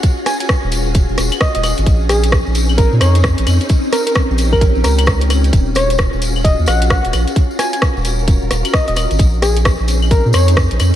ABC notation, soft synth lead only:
X:1
M:4/4
L:1/16
Q:"Swing 16ths" 1/4=131
K:Ebm
V:1 name="Soft synth lead"
z2 a a z8 e e e z | z2 A z4 z B z d z4 z | z2 B B z3 B z2 B B z4 | z2 d z4 z e z g z g z3 |
z2 a a z8 e e z2 | z2 A z4 z B z d z4 z |]